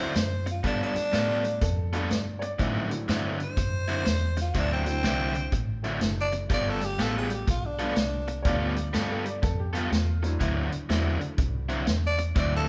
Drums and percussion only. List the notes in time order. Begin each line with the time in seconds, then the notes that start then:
0.15 snare, closed hi-hat
0.47 closed hi-hat
0.64 kick, closed hi-hat
0.95 snare, closed hi-hat
1.13 snare, closed hi-hat
1.44 closed hi-hat
1.61 kick, snare, closed hi-hat
1.93 closed hi-hat
2.10 snare, closed hi-hat
2.42 closed hi-hat
2.59 kick, closed hi-hat
2.91 closed hi-hat
3.08 snare, closed hi-hat
3.40 closed hi-hat
3.57 kick, closed hi-hat
3.89 closed hi-hat
4.06 snare, closed hi-hat
4.37 snare, closed hi-hat
4.54 kick, closed hi-hat
4.86 snare, closed hi-hat
5.03 snare, closed hi-hat
5.35 closed hi-hat
5.52 kick, closed hi-hat
5.84 closed hi-hat
6.01 snare, closed hi-hat
6.32 closed hi-hat
6.50 kick, closed hi-hat
6.81 snare, closed hi-hat
6.99 snare, closed hi-hat
7.30 closed hi-hat
7.48 kick, closed hi-hat
7.79 closed hi-hat
7.96 snare, closed hi-hat
8.28 closed hi-hat
8.45 kick, closed hi-hat
8.76 closed hi-hat
8.94 snare, closed hi-hat
9.25 closed hi-hat
9.43 kick, snare, closed hi-hat
9.75 closed hi-hat
9.92 snare, closed hi-hat
10.24 snare, closed hi-hat
10.41 kick, closed hi-hat
10.72 closed hi-hat
10.90 snare, closed hi-hat
11.21 closed hi-hat
11.38 kick, closed hi-hat
11.69 closed hi-hat
11.87 snare, closed hi-hat
12.18 closed hi-hat
12.36 kick, closed hi-hat